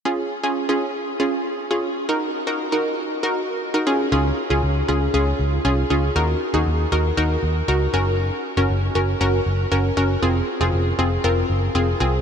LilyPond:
<<
  \new Staff \with { instrumentName = "Synth pluck" } { \time 4/4 \key des \major \tempo 4 = 118 <des' f' aes'>8 r16 <des' f' aes'>8 <des' f' aes'>8. r16 <des' f' aes'>8. r16 <des' f' aes'>8 r16 | <ees' ges' bes'>8 r16 <ees' ges' bes'>8 <ees' ges' bes'>8. r16 <ees' ges' bes'>8. r16 <ees' ges' bes'>16 <des' f' aes'>8 | <des' f' aes'>8 r16 <des' f' aes'>8 r16 <des' f' aes'>8 <des' f' aes'>8. r16 <des' f' aes'>8 <des' f' aes'>8 | <ees' ges' bes'>8 r16 <ees' ges' aes'>8 r16 <ees' ges' bes'>8 <ees' ges' bes'>8. r16 <ees' ges' bes'>8 <des' ges' bes'>8~ |
<des' ges' bes'>8 r16 <des' ges' bes'>8 r16 <des' ges' bes'>8 <des' ges' bes'>8. r16 <des' ges' bes'>8 <des' ges' bes'>8 | <c' f' aes'>8 r16 <c' f' aes'>8 r16 <c' f' aes'>8 <c' f' bes'>8. r16 <c' f' aes'>8 <c' f' aes'>8 | }
  \new Staff \with { instrumentName = "Picked electric bass" } { \clef bass \time 4/4 \key des \major r1 | r1 | des,8 r16 des,16 des,8 des,8 des,8 des,8 c,8 des,8 | ees,8 r16 ees,16 ees,8 ees,8 ees,8 ees,8 des,8 ges,,8~ |
ges,,8 r16 ges,,16 ges,,8 ges,,8 ges,,8 ges,,8 ges,,8 ges,,8 | f,,8 r16 f,,16 f,,8 f,,8 f,,8 ges,,8 f,,8 c,8 | }
>>